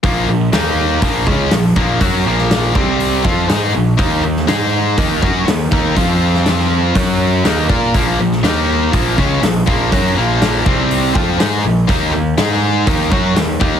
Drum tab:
HH |o---o---o---o---|o---o---o---o---|o---o---o---o---|o---o---o---o---|
SD |----o-------o---|---oo-------o---|---oo-------o---|---oo-------o---|
BD |o-------o-o---o-|o-----o---o-----|o-------o-o---o-|o-------o-----o-|

HH |o---o---o---o---|o---o---o---o---|o---o---o---o---|
SD |---oo-------o---|----o-------o---|----o-------o---|
BD |o-------o-o---o-|o-----o---o-----|o-------o-o---o-|